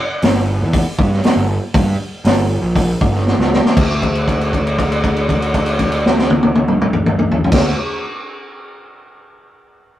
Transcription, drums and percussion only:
0.22 snare loud
0.22 open hi-hat medium
0.73 kick medium
0.73 open hi-hat medium
0.99 kick medium
1.13 snare soft
1.24 snare loud
1.24 open hi-hat medium
1.74 kick loud
1.74 open hi-hat medium
2.25 snare loud
2.25 open hi-hat medium
2.76 kick medium
2.76 open hi-hat medium
3.01 kick medium
3.15 snare soft
3.27 snare medium
3.40 snare medium
3.53 snare medium
3.65 snare medium
3.77 kick loud
3.77 crash medium
4.02 kick medium
4.02 crash soft
4.15 crash soft
4.28 kick medium
4.28 crash soft
4.41 crash soft
4.53 kick medium
4.53 crash soft
4.67 crash soft
4.79 kick medium
4.79 crash medium
4.92 crash soft
5.04 kick medium
5.04 crash soft
5.16 crash soft
5.29 kick medium
5.29 crash soft
5.42 crash medium
5.54 kick medium
5.54 crash medium
5.66 crash medium
5.79 kick medium
5.79 crash medium
5.92 crash medium
6.06 snare loud
6.19 snare medium
6.30 high tom loud
6.43 high tom medium
6.55 high tom medium
6.68 mid tom medium
6.81 mid tom loud
6.93 mid tom medium
7.06 mid tom loud
7.19 mid tom medium
7.31 floor tom medium
7.44 floor tom loud
7.52 kick loud
7.52 snare loud
7.52 crash loud

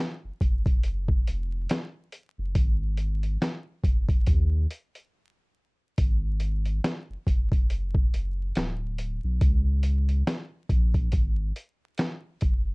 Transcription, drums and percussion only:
0.41 kick medium
0.41 closed hi-hat medium
0.66 kick loud
0.66 closed hi-hat soft
0.83 closed hi-hat medium
1.08 kick medium
1.27 closed hi-hat medium
1.69 snare loud
1.69 closed hi-hat medium
2.12 closed hi-hat medium
2.55 kick loud
2.55 closed hi-hat medium
2.97 closed hi-hat medium
3.23 closed hi-hat soft
3.42 snare loud
3.42 closed hi-hat medium
3.84 kick medium
3.84 closed hi-hat medium
4.09 kick loud
4.09 closed hi-hat soft
4.27 kick medium
4.27 closed hi-hat medium
4.71 closed hi-hat medium
4.95 closed hi-hat soft
5.98 kick loud
5.98 closed hi-hat medium
6.40 closed hi-hat medium
6.65 closed hi-hat soft
6.84 snare loud
6.84 closed hi-hat medium
7.27 kick medium
7.27 closed hi-hat medium
7.52 kick medium
7.52 closed hi-hat soft
7.70 closed hi-hat medium
7.95 kick loud
8.14 closed hi-hat medium
8.55 snare loud
8.55 closed hi-hat medium
8.98 closed hi-hat medium
9.41 kick loud
9.41 closed hi-hat loud
9.83 closed hi-hat medium
10.09 closed hi-hat soft
10.27 snare loud
10.27 closed hi-hat medium
10.69 kick medium
10.69 closed hi-hat medium
10.94 kick loud
10.94 closed hi-hat soft
11.12 kick medium
11.12 closed hi-hat medium
11.56 closed hi-hat medium
11.98 snare loud
11.98 closed hi-hat medium
12.41 kick medium
12.41 closed hi-hat medium

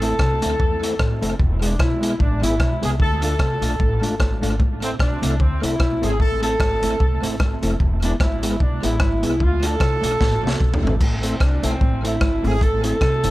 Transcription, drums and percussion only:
0.02 closed hi-hat medium
0.19 kick loud
0.19 cross-stick loud
0.42 closed hi-hat loud
0.60 kick loud
0.83 closed hi-hat medium
0.99 kick loud
0.99 cross-stick loud
1.22 closed hi-hat medium
1.40 kick loud
1.62 closed hi-hat medium
1.79 kick loud
1.79 cross-stick loud
2.03 closed hi-hat loud
2.20 kick loud
2.43 closed hi-hat loud
2.60 kick loud
2.60 cross-stick loud
2.83 closed hi-hat medium
3.00 kick loud
3.22 closed hi-hat medium
3.39 kick loud
3.39 cross-stick loud
3.62 closed hi-hat loud
3.80 kick loud
4.03 closed hi-hat medium
4.20 kick loud
4.20 cross-stick loud
4.43 closed hi-hat medium
4.60 kick loud
4.82 closed hi-hat medium
4.99 kick loud
4.99 cross-stick loud
5.23 closed hi-hat loud
5.40 kick loud
5.63 closed hi-hat loud
5.80 kick loud
5.80 cross-stick loud
6.03 closed hi-hat medium
6.20 kick medium
6.43 closed hi-hat medium
6.60 kick loud
6.60 cross-stick loud
6.83 closed hi-hat medium
7.00 kick loud
7.23 closed hi-hat medium
7.40 kick loud
7.40 cross-stick loud
7.63 closed hi-hat medium
7.80 kick medium
8.02 closed hi-hat medium
8.20 kick loud
8.20 cross-stick loud
8.43 closed hi-hat loud
8.60 kick loud
8.83 closed hi-hat medium
9.00 kick loud
9.00 cross-stick loud
9.23 closed hi-hat medium
9.40 kick loud
9.63 closed hi-hat medium
9.80 kick loud
9.80 cross-stick loud
10.04 closed hi-hat loud
10.21 kick loud
10.21 snare medium
10.47 snare medium
10.60 kick loud
10.74 floor tom medium
10.87 floor tom medium
11.01 kick loud
11.01 crash medium
11.23 closed hi-hat medium
11.40 kick loud
11.40 cross-stick loud
11.63 closed hi-hat loud
11.81 kick loud
12.05 closed hi-hat medium
12.21 kick loud
12.21 cross-stick loud
12.44 open hi-hat soft
12.61 kick loud
12.61 hi-hat pedal medium
12.84 closed hi-hat medium
13.01 kick loud
13.01 cross-stick loud
13.24 closed hi-hat medium

